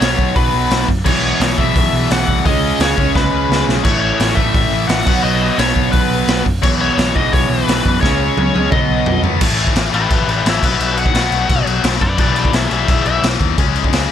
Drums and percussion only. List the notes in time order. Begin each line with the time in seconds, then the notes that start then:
0.01 snare, open hi-hat
0.19 kick
0.36 kick, open hi-hat
0.71 snare, open hi-hat
0.89 kick
1.06 kick, crash
1.41 snare, open hi-hat
1.58 kick
1.76 kick, open hi-hat
2.11 snare, open hi-hat
2.28 kick
2.45 kick, open hi-hat
2.80 snare, open hi-hat
2.98 kick
3.15 kick, snare
3.52 snare
3.69 snare
3.85 kick, crash
4.20 snare, open hi-hat
4.37 kick
4.54 kick, open hi-hat
4.89 snare, open hi-hat
5.07 kick, crash
5.58 snare, open hi-hat
5.76 kick
5.93 kick, open hi-hat
6.28 snare, open hi-hat
6.46 kick
6.63 kick, crash
6.98 snare, open hi-hat
7.16 kick
7.33 kick, open hi-hat
7.68 snare, open hi-hat
7.86 kick
8.03 kick, snare
8.38 high tom
8.56 high tom
8.72 kick, mid tom
9.06 floor tom
9.24 floor tom
9.41 kick, crash
9.59 crash
9.67 kick
9.76 snare, crash
9.94 crash
10.10 kick, crash
10.29 crash
10.46 snare, crash
10.63 kick, crash
10.80 crash
10.97 crash
11.06 kick
11.15 snare, crash
11.32 crash
11.49 kick, crash
11.67 crash
11.84 snare, crash
12.01 kick, crash
12.18 kick, crash
12.36 crash
12.45 kick
12.53 snare, crash
12.71 crash
12.88 kick, crash
13.06 crash
13.23 snare, crash
13.41 kick, crash
13.58 kick, crash
13.76 crash
13.84 kick
13.93 snare, crash